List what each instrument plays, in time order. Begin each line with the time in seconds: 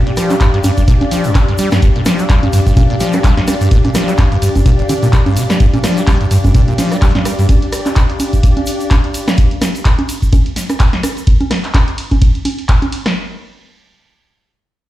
Already playing: ambient pad D4 G4 F5, string section D4 G4 D5
0.07 acid bass A#2, closed hi-hat
0.17 acid bass F3, cross-stick, open hi-hat, ride, shaker
0.30 acid bass G3, clap, closed hi-hat, high conga, shaker
0.40 acid bass G2, kick, clap, closed hi-hat, ride, shaker
0.54 acid bass G2, closed hi-hat
0.64 acid bass G2, open hi-hat, ride, high conga, shaker
0.77 acid bass G2, kick, closed hi-hat, shaker
0.88 acid bass A#2, kick, closed hi-hat, ride, shaker
1.01 acid bass G1, closed hi-hat, high conga
1.11 acid bass F3, open hi-hat, ride, shaker
1.24 acid bass G2, closed hi-hat, shaker
1.35 acid bass G2, kick, clap, closed hi-hat, ride, high conga, shaker
1.48 acid bass G2, closed hi-hat
1.58 acid bass G3, open hi-hat, ride, shaker
1.71 acid bass G2, cross-stick, snare, closed hi-hat, high conga, shaker
1.82 acid bass G2, kick, closed hi-hat, ride, shaker
1.96 acid bass A#2, closed hi-hat
2.05 acid bass F3, cross-stick, snare, open hi-hat, ride, high conga, shaker
2.19 acid bass G3, closed hi-hat, shaker
2.29 acid bass G3, kick, clap, closed hi-hat, ride, shaker
2.43 acid bass G2, closed hi-hat, high conga
2.53 acid bass G2, open hi-hat, ride, shaker
2.66 acid bass G2, kick, closed hi-hat, shaker
2.76 acid bass A#2, kick, closed hi-hat, ride, high conga, shaker
2.90 acid bass A#2, closed hi-hat
3.00 acid bass F3, snare, open hi-hat, ride, shaker
3.13 acid bass G3, cross-stick, closed hi-hat, high conga, shaker
3.24 acid bass G3, kick, clap, closed hi-hat, ride, shaker
3.37 acid bass G2, snare, closed hi-hat
3.47 acid bass G3, cross-stick, open hi-hat, ride, high conga, shaker
3.61 acid bass G2, closed hi-hat, shaker
3.71 acid bass A#2, kick, closed hi-hat, ride, shaker
3.85 acid bass A#2, closed hi-hat, high conga
3.94 acid bass F3, cross-stick, snare, open hi-hat, ride, shaker
4.08 acid bass G3, clap, closed hi-hat, shaker
4.18 acid bass G2, kick, clap, closed hi-hat, ride, high conga, shaker
4.32 acid bass G2, closed hi-hat
4.42 acid bass G2, open hi-hat, ride, shaker
4.55 acid bass G2, kick, closed hi-hat, high conga, shaker
4.66 acid bass A#2, kick, closed hi-hat, ride, shaker
4.79 acid bass G1, closed hi-hat
4.89 acid bass D3, open hi-hat, ride, high conga, shaker
5.03 acid bass A#2, closed hi-hat, shaker
5.13 acid bass A#2, kick, clap, closed hi-hat, ride, shaker
5.26 acid bass G2, closed hi-hat, high conga
5.37 acid bass C3, open hi-hat, ride, shaker
5.50 acid bass G3, cross-stick, snare, closed hi-hat, shaker
5.60 acid bass G2, kick, closed hi-hat, ride, shaker
5.74 acid bass A#2, closed hi-hat, high conga
5.84 acid bass F3, cross-stick, snare, open hi-hat, ride, shaker
5.97 acid bass G3, closed hi-hat, shaker
6.07 acid bass G3, kick, clap, closed hi-hat, ride, high conga, shaker
6.21 acid bass G2, closed hi-hat
6.31 acid bass G2, open hi-hat, ride, shaker
6.44 acid bass G2, kick, closed hi-hat, high conga, shaker
6.54 acid bass A#2, kick, closed hi-hat, ride, shaker
6.68 acid bass A#2, closed hi-hat
6.78 acid bass F3, snare, open hi-hat, ride, high conga, shaker
6.92 acid bass G3, cross-stick, closed hi-hat, shaker
7.02 acid bass G3, kick, clap, closed hi-hat, ride, shaker
7.15 acid bass G2, snare, closed hi-hat, high conga
7.25 acid bass G3, cross-stick, open hi-hat, ride, shaker
7.39 acid bass G2, closed hi-hat, shaker
7.49 kick, closed hi-hat, ride, high conga, shaker
7.62 closed hi-hat
7.72 cross-stick, open hi-hat, ride, shaker
7.86 clap, closed hi-hat, high conga, shaker
7.96 kick, clap, closed hi-hat, ride, shaker
8.10 closed hi-hat
8.20 open hi-hat, ride, high conga, shaker
8.33 kick, closed hi-hat, shaker
8.43 kick, closed hi-hat, ride, shaker
8.57 closed hi-hat, high conga
8.66 open hi-hat, ride, shaker
8.80 closed hi-hat, shaker
8.91 kick, clap, closed hi-hat, ride, high conga, shaker
9.04 closed hi-hat
9.14 open hi-hat, ride, shaker
9.28 cross-stick, snare, closed hi-hat, high conga, shaker
9.37 kick, closed hi-hat, ride, shaker
9.51 closed hi-hat
9.62 cross-stick, snare, open hi-hat, ride, high conga, shaker
9.75 closed hi-hat, shaker
9.85 kick, clap, closed hi-hat, ride, shaker
9.99 closed hi-hat, high conga
10.09 open hi-hat, ride, shaker
10.22 kick, closed hi-hat, shaker
10.33 kick, closed hi-hat, ride, high conga, shaker
10.46 closed hi-hat
10.56 snare, open hi-hat, ride, shaker
10.70 cross-stick, closed hi-hat, high conga, shaker
10.80 kick, clap, closed hi-hat, ride, shaker
10.93 snare, closed hi-hat
11.03 cross-stick, open hi-hat, ride, high conga, shaker
11.17 closed hi-hat, shaker
11.27 kick, closed hi-hat, ride
11.41 closed hi-hat, high conga
11.51 cross-stick, snare, open hi-hat, ride
11.64 clap, closed hi-hat
11.74 kick, clap, closed hi-hat, ride, high conga
11.88 closed hi-hat
11.98 open hi-hat, ride
12.11 kick, closed hi-hat, high conga
12.22 kick, closed hi-hat, ride
12.35 closed hi-hat
12.45 open hi-hat, ride, high conga
12.59 closed hi-hat
12.69 kick, clap, closed hi-hat, ride
12.82 closed hi-hat, high conga
12.92 open hi-hat, ride
13.06 cross-stick, snare, closed hi-hat